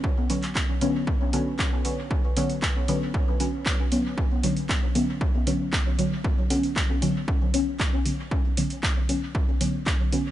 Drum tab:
HH |--oo--o---o---o-|--oo--o---o---o-|--oo--o---o---o-|--oo--o---o---o-|
CP |---xx-------x---|----x-------x---|----x-------x---|----x-------x---|
BD |o---o---o---o---|o---o---o---o---|o---o---o---o---|o---o---o---o---|

HH |--oo--o---o---o-|
CP |----x-------x---|
BD |o---o---o---o---|